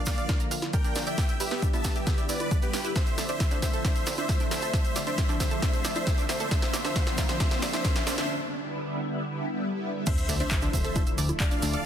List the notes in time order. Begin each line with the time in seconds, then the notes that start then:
Already playing: D3 F3 A#3 F4
0.06 A#2 D5 F5, kick, snare, open hi-hat, shaker
0.18 D3 F3 A#3 F4 D5, closed hi-hat, shaker
0.29 D4, kick, snare, closed hi-hat, high conga, shaker
0.40 D3 F3 A#3 F4 A#5, closed hi-hat, shaker
0.51 A#1 F5, open hi-hat, shaker
0.62 D3 F3 A#3 F4, snare, closed hi-hat, high conga, shaker
0.73 D4 A#4 G5, kick, closed hi-hat, shaker
0.85 D3 F3 A#3 D4 F4, closed hi-hat, shaker
0.95 A#1 D4, snare, open hi-hat, shaker
1.07 D3 F3 A#3 F4 D5 E5 G5, closed hi-hat, shaker
1.18 B3, kick, snare, closed hi-hat, shaker
1.29 D3 G3 B3 E4, closed hi-hat, shaker
1.40 G1 G4 B4 E5, open hi-hat, shaker
1.51 D3 G3 B3 E4, snare, shaker
1.62 D4, kick, closed hi-hat, shaker
1.73 G1 D3 G3 B3 E4 E5 A5, closed hi-hat, high conga, shaker
1.84 G2, kick, snare, open hi-hat, shaker
1.96 D3 G3 B3 E4 G4 E5, closed hi-hat, shaker
2.07 B3, kick, snare, closed hi-hat, shaker
2.18 D3 G3 B3 E4 D5, closed hi-hat, shaker
2.29 G1 E4 B4 D5, open hi-hat, shaker
2.40 D3 G3 B3 E4, closed hi-hat, high conga, shaker
2.51 D4, kick, closed hi-hat, shaker
2.62 D3 G3 B3 E4 G4 B4, closed hi-hat, shaker
2.73 G1 G4, snare, open hi-hat, shaker
2.84 D3 G3 B3 E4, closed hi-hat, high conga, shaker
2.96 D4 C5 E5, kick, snare, closed hi-hat, riser, shaker
3.07 D3 F3 A3 E4, closed hi-hat, shaker
3.18 D2 D5, snare, open hi-hat, shaker
3.29 D3 F3 A3 D4 E4 C5 E5, closed hi-hat, shaker
3.40 E4, kick, snare, closed hi-hat, shaker
3.51 D2 D3 F3 A3 D4 E4, closed hi-hat, shaker
3.62 D1 C5 E5, kick, snare, open hi-hat, shaker
3.73 D3 F3 A3 E4 A4, closed hi-hat, shaker
3.85 D4 C5 E5, kick, snare, closed hi-hat, high conga, shaker
3.96 D3 F3 A3 E4, closed hi-hat, shaker
4.06 D2 D5, snare, open hi-hat, shaker
4.18 D3 F3 A3 D4 E4 C5 E5, closed hi-hat, high conga, shaker
4.29 E4, kick, snare, closed hi-hat, shaker
4.40 D3 F3 A3 D4 E4, closed hi-hat, shaker
4.51 D2 C5 E5, snare, open hi-hat, shaker
4.62 D3 F3 A3 E4 A4, closed hi-hat, shaker
4.73 D4 C5 E5, kick, snare, closed hi-hat, shaker
4.85 D3 F3 A3 D4, closed hi-hat, shaker
4.96 D2 D5, snare, open hi-hat, shaker
5.07 D3 F3 A3 D4 C5 E5, closed hi-hat, shaker
5.18 E4, kick, snare, closed hi-hat, shaker
5.29 D2 D3 F3 A3 D4, closed hi-hat, shaker
5.40 C5 E5, kick, snare, open hi-hat, shaker
5.51 D3 F3 A3 D4 A4, closed hi-hat, shaker
5.62 D4 C5 E5, kick, snare, closed hi-hat, shaker
5.74 D3 F3 A3 D4, closed hi-hat, shaker
5.84 D2 D5, snare, open hi-hat, shaker
5.95 D3 F3 A3 D4 C5 E5, closed hi-hat, high conga, shaker
6.07 E4, kick, snare, closed hi-hat, shaker
6.18 D3 F3 A3 D4, closed hi-hat, shaker
6.29 D2 C5 E5, snare, open hi-hat, shaker
6.40 D3 F3 A3 D4 A4, closed hi-hat, shaker
6.51 D4 C5 E5, kick, snare, closed hi-hat, shaker
6.62 D3 F3 A#3 F4, snare, closed hi-hat, shaker
6.73 A#1 D5, snare, open hi-hat, shaker
6.85 D3 F3 A#3 D4 F4 C5 E5, snare, closed hi-hat, shaker
6.96 D4 C5 E5, kick, snare, closed hi-hat, shaker
7.06 A#1 D3 F3 A#3 F4, snare, closed hi-hat, shaker
7.18 A#2 D5, kick, snare, open hi-hat, shaker
7.29 D3 F3 A#3 D4 F4 C5 E5, snare, closed hi-hat, shaker
7.40 D4 C5 E5, kick, snare, closed hi-hat, high conga, shaker
7.51 D3 F3 A#3 F4, snare, closed hi-hat, shaker
7.62 A#1 D5, snare, open hi-hat, shaker
7.73 D3 F3 A#3 D4 F4 C5 E5, snare, closed hi-hat, high conga, shaker
7.84 D4 C5 E5, kick, snare, closed hi-hat, shaker
7.95 D3 F3 A#3 F4, snare, closed hi-hat, shaker
8.07 A#1 D5, snare, open hi-hat, shaker
8.18 D3 F3 A#3 D4 F4 C5 E5, snare, closed hi-hat, shaker
8.40 D3 G3 B3 E4
8.62 D3 G3 B3 E4
8.85 D3 G3 B3 E4
9.07 D3 G3 B3 E4
9.29 D3 G3 B3 E4
9.51 D3 G3 B3 E4
9.73 D3 G3 B3 E4
9.96 D3 G3 B3 E4
10.06 D4 C5 E5, kick, closed hi-hat, crash, sub drop, shaker
10.17 D3 F3 A3 E4, closed hi-hat, shaker
10.29 D2 D5, open hi-hat, shaker
10.40 D3 F3 A3 D4 E4 C5 E5, closed hi-hat, shaker
10.51 E4, kick, clap, closed hi-hat, shaker
10.62 D2 D3 F3 A3 D4 E4, closed hi-hat, shaker
10.73 D1 C5 E5, kick, open hi-hat, shaker
10.84 D3 F3 A3 E4 A4, closed hi-hat, shaker
10.95 D4, kick, closed hi-hat, high conga, shaker
11.06 D3 F3 A3 E4 E5, closed hi-hat, shaker
11.18 D2 D5, open hi-hat, shaker
11.29 D3 F3 A3 E4, closed hi-hat, high conga, shaker
11.40 D4 D5 F5, kick, clap, closed hi-hat, shaker
11.51 D3 F3 A3 D4 E4, closed hi-hat, shaker
11.62 D2 D4, open hi-hat, shaker
11.73 D3 F3 A3 E4 A4 D5 F5, closed hi-hat, shaker